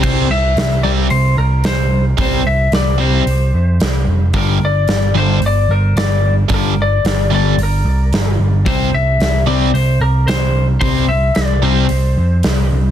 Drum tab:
CC |x-------|--------|--------|--------|
HH |--o-o-o-|o-o-o-o-|o-o-o-o-|o-o-o-o-|
SD |--o---o-|--o---o-|--o---o-|--o---o-|
BD |o-------|o-------|o-------|o-------|

CC |--------|--------|
HH |o-o-o-o-|o-o-o-o-|
SD |--o---o-|--o---o-|
BD |o-------|o-------|